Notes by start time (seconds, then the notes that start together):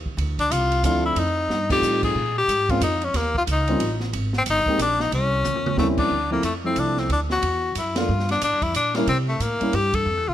Already playing: D#2
0.06 kick
0.17 D2, ride
0.39 D4, kick, ride
0.50 C2 F4, hi-hat pedal, ride
0.72 ride
0.83 D2 F3 A3 C4 D4 E4 F4, hi-hat pedal, ride
1.05 E4
1.16 F2 D#4, ride
1.48 G2, snare
1.69 G3 A3 C4 D#4 F4 G4, kick, crash
1.82 A2, hi-hat pedal
2.03 G#4, kick, crash
2.15 A#2
2.38 G4
2.48 G#2, hi-hat pedal, ride
2.69 G#3 A#3 C4 C#4 F4, kick, ride
2.81 F2 D#4, hi-hat pedal, ride
3.02 C#4, ride
3.14 D#2 A#3, snare, ride
3.35 F4, kick
3.47 C#2, hi-hat pedal, ride
3.52 D#4
3.67 G3 A#3 C4 C#4 F4, ride
3.80 A1, ride
4.00 snare
4.13 G#1, ride
4.33 snare
4.38 C4
4.46 G1, hi-hat pedal, ride
4.50 D#4
4.66 G#3 A#3 C4 D#4 G4, kick
4.78 A#1, hi-hat pedal, ride
4.82 D4
5.00 D#4, snare
5.12 C2 C#4, ride
5.44 E2, hi-hat pedal, mid tom
5.56 mid tom
5.66 mid tom
5.77 D#2 G3 A3 A#3 C4 C#4 E4, snare
5.98 D4, kick, crash
6.10 D2
6.30 F3 A3 A#3 C4 E4
6.43 F2 A3, hi-hat pedal, ride
6.64 F3 A3 C4 E4
6.76 C2 D4, hi-hat pedal, ride
6.97 C4, snare
7.09 D2 D4, ride
7.30 F#4, snare
7.42 E2, ride
7.75 F#2 E4, hi-hat pedal, ride
7.96 A3 A#3 D4 F4, snare, ride
8.09 G2
8.19 snare
8.29 D4, snare, ride
8.41 A2 D4, hi-hat pedal, ride
8.53 G2
8.62 F2 E4, kick, ride
8.74 A#2 D4, hi-hat pedal, ride
8.95 G3 A#3 C#4 E4, snare, ride
9.07 C3 C4, ride
9.28 A3
9.40 A2 A#3, hi-hat pedal, ride
9.60 G3 A#3 C#4 E4, muted upright bass stroke, ride
9.73 G2 G4, ride
9.93 A4, kick, ride
10.05 F2
10.17 E2
10.28 C2 F4